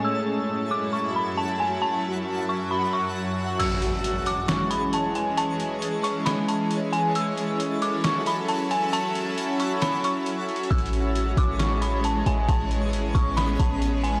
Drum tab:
CC |------------------------|------------------------|x-----------------------|------------------------|
HH |------------------------|------------------------|x--x--x--x--x--x--x--x--|x--x--x--x--x--x--x--x--|
SD |------------------------|------------------------|------------o-----------|------------o-----------|
BD |------------------------|------------------------|------------------------|------------------------|

CC |------------------------|------------------------|------------------------|------------------------|
HH |x--x--x--x--x--x--x--x--|x--x--x--x--x--x--x--xxx|xxxx--x--x--x--x--x--x--|x--x--x--x--x--x--x--x--|
SD |------------o-----------|------------o-----------|------------o-----------|------------o-----------|
BD |------------------------|------------------------|o--------o--------------|o--------o-----o--------|